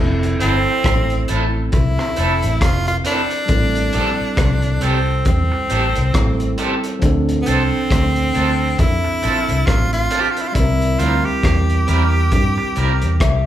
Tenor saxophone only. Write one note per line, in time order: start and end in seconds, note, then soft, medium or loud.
0.41 1.25 C4 loud
1.74 2.63 E4 medium
2.62 2.87 F4 medium
2.88 2.96 F4 medium
3.06 4.85 D4 medium
4.83 5.27 C4 medium
5.28 6.55 C4 medium
7.42 7.50 B3 medium
7.48 8.81 C4 loud
8.79 9.68 E4 medium
9.66 9.92 F4 medium
9.93 10.22 F4 loud
10.20 10.32 G4 medium
10.31 10.43 F4 medium
10.41 10.49 E4 medium
10.48 10.56 F4 medium
10.54 11.01 E4 loud
10.99 11.27 F4 loud
11.25 13.46 G4 medium